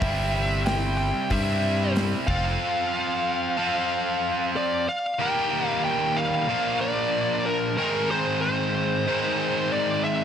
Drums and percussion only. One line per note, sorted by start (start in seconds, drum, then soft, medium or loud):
0.02 kick loud
0.02 open hi-hat medium
0.66 snare loud
0.66 open hi-hat medium
1.30 kick medium
1.30 open hi-hat medium
1.96 snare loud
1.96 open hi-hat medium
2.28 kick medium